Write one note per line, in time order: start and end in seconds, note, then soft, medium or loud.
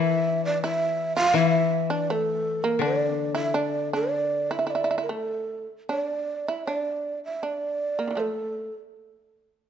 0.00 1.32 E3 medium
0.00 0.36 E4 medium
0.00 0.45 E5 medium
0.36 0.60 D4 medium
0.45 0.62 D5 medium
0.63 1.14 E4 medium
0.63 1.13 E5 loud
1.16 1.34 F4 medium
1.16 1.34 F5 loud
1.34 3.53 E3 medium
1.34 1.86 E4 medium
1.34 1.92 E5 loud
1.90 2.07 D4 medium
1.90 2.13 D5 medium
2.10 2.60 A3 medium
2.10 2.65 A4 medium
2.63 2.80 A#3 medium
2.63 2.81 A#4 medium
2.79 5.09 D3 medium
2.79 3.16 D4 medium
2.83 3.33 D5 medium
3.16 3.32 A#3 medium
3.35 3.52 E4 medium
3.35 3.57 E5 medium
3.54 3.89 D4 medium
3.54 3.93 D5 medium
3.93 4.47 D4 medium
3.93 4.53 D5 medium
4.51 4.58 E4 medium
4.51 4.72 E5 medium
4.59 4.66 E4 medium
4.67 4.74 E4 medium
4.67 5.02 D5 medium
4.75 4.82 E4 medium
4.84 4.89 E4 medium
4.91 4.97 E4 medium
4.98 5.05 E4 medium
5.03 5.12 A#4 soft
5.09 5.66 A3 medium
5.09 5.68 A4 medium
5.89 6.44 D4 medium
5.89 6.02 C#5 medium
6.02 6.49 D5 medium
6.48 6.66 E4 medium
6.48 6.65 E5 medium
6.65 7.39 D4 medium
6.65 7.20 D5 medium
7.25 7.45 E5 medium
7.43 7.96 D4 medium
7.43 8.21 D5 medium
7.99 8.16 A#3 medium
8.07 8.10 D3 soft
8.07 8.15 E3 soft
8.15 8.29 F3 soft
8.15 8.69 A3 medium
8.20 8.75 A4 medium